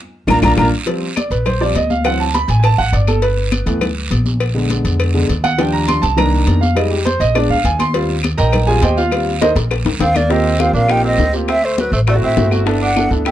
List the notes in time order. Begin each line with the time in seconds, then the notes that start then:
0.27 A#1 A#3 D4 F4 A#5, low bongo, low conga, long guiro, claves
0.42 A#1 A#3 D4 F4 A#5, low bongo, low conga, long guiro, claves
0.57 A#1 A#3 D4 F4 A#5, low bongo, low conga, long guiro, claves
0.86 F3 G3 C4, cowbell, high conga, long guiro
1.02 high conga
1.16 D5, cowbell, high conga, short guiro, claves
1.30 A#1 B4, cowbell, short guiro
1.46 C5, cowbell, high conga, low conga, long guiro, claves
1.61 F3 G3 C4 D5, high conga
1.75 D2 D#5, cowbell, high conga, short guiro
1.90 F5, high conga, short guiro
2.04 E3 F#3 C4 F#5, cowbell, high conga, long guiro, claves
2.20 A5, high conga
2.34 B5, cowbell, high conga, short guiro
2.48 A1 G#5, cowbell, high conga, short guiro
2.60 G#5, long guiro, claves
2.64 A5, cowbell, high conga
2.78 A1 F#5, high conga
2.92 G1 D5, cowbell, high conga, short guiro
3.07 A4, cowbell, high conga, short guiro, claves
3.22 B4, cowbell, long guiro
3.37 high conga
3.52 cowbell, high conga, short guiro, claves
3.66 D2 E3 A3 B3, cowbell, short guiro
3.81 cowbell, high conga, low conga, long guiro, claves
3.96 high conga
4.11 A#1, cowbell, high conga, short guiro
4.26 high conga, short guiro
4.40 cowbell, high conga, long guiro, claves
4.54 D3 G#3 B3, high conga
4.70 cowbell, high conga, short guiro
4.85 F2, cowbell, high conga, short guiro
5.00 cowbell, high conga, long guiro, claves
5.14 D3 G#3 B3, high conga
5.29 D#2, cowbell, high conga, short guiro
5.44 F#5, cowbell, high conga, short guiro, claves
5.58 F3 G3 D4 G5, cowbell, high conga, long guiro
5.73 A#5, high conga
5.88 C6, cowbell, high conga, short guiro, claves
6.02 C2 A5, cowbell, short guiro
6.17 D#3 A#3 D4 A#5, cowbell, high conga, low conga, long guiro, claves
6.34 high conga
6.46 F2, cowbell, high conga, short guiro
6.61 F5, high conga, short guiro
6.75 G3 G#3 D#4 D#5, cowbell, long guiro, claves
6.91 G4, high conga
7.05 C5, cowbell, high conga, short guiro
7.20 A#1 D#5, cowbell, high conga, short guiro
7.34 G#3 B3 D4 D5, cowbell, high conga, long guiro, claves
7.49 D2 F5, high conga
7.64 D#2 G#5, cowbell, high conga, short guiro
7.79 C6, cowbell, high conga, short guiro, claves
7.93 G3 C4 F4, cowbell, long guiro
8.10 high conga
8.23 cowbell, high conga, short guiro, claves
8.38 A#1 A#4 D#5 G5 A#5, cowbell, short guiro
8.53 cowbell, high conga, low conga, long guiro, claves
8.67 G3 C4 F4 G#4 G#5, high conga, low conga
8.82 D#2 G4 C5 D#5 G5, cowbell, high conga, short guiro
8.97 F4 F5, high conga, short guiro
9.11 G3 C4 F4, cowbell, high conga, long guiro, claves
9.27 high conga
9.41 D#4 A#4 C5 D#5, cowbell, high bongo, high conga, short guiro
9.55 A#1, cowbell, high bongo, high conga, short guiro
9.71 cowbell, high bongo, high conga, long guiro, claves
9.85 D2, low bongo, high conga
9.99 D#2 C4 F5, cowbell, low bongo, high conga, short guiro
10.15 A#3 D5, cowbell, low bongo, high conga, short guiro, claves
10.30 A#3 C4 F4 G4 D#5, high bongo, high conga, long guiro
10.45 high bongo, high conga
10.59 A#3 C4 F4 G4 F5, high bongo, high conga, short guiro, claves
10.73 A#1 A#3 C4 D4 F4 A#4 F5, short guiro
10.88 A#3 C4 D#4 F4 G4 G5, high bongo, high conga, long guiro, claves
11.04 C4 D#5, high bongo, high conga
11.18 D2, high bongo, low bongo, short guiro
11.33 A#3 C4 F4 G4, high bongo, high conga, short guiro
11.48 C4 E5, high bongo, high conga, long guiro, claves
11.64 A3 C5, high bongo, high conga
11.78 F#3 B4, high bongo, high conga, short guiro
11.92 A1 A3 C5, high conga, short guiro
12.07 A3 C4 E4 F#4 D5, high bongo, high conga, long guiro, claves
12.15 A3 C4 E4 F#4
12.22 A1 C4 E5, high bongo, high conga
12.37 G1 A3 C4 E4 F#4, high bongo, low bongo, high conga, short guiro
12.51 A3 C4 E4 F#4, high bongo, high conga, short guiro, claves
12.66 B3 D4 E4 A4, high bongo, high conga, long guiro
12.82 D4 F#5, high bongo, high conga
12.96 B3 D4 E4 A4, high bongo, high conga, short guiro, claves
13.10 D2 B3 D4 E4 A4, short guiro
13.25 B3 D4 E4 A4 G5, high bongo, high conga, long guiro, claves